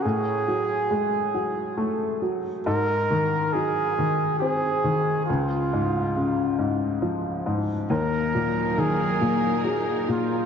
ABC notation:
X:1
M:6/8
L:1/8
Q:3/8=46
K:Db
V:1 name="Flugelhorn"
A4- A z | B2 A2 A2 | F4 z2 | B2 A2 A F |]
V:2 name="String section"
z6 | z6 | z6 | [G,B,EB]6 |]
V:3 name="Upright piano" clef=bass
=A,, G, _A, G, =A, G, | A,, E, G, E, C E, | D,, A,, D, A,, F, A,, | E,, B,, E, B,, G, B,, |]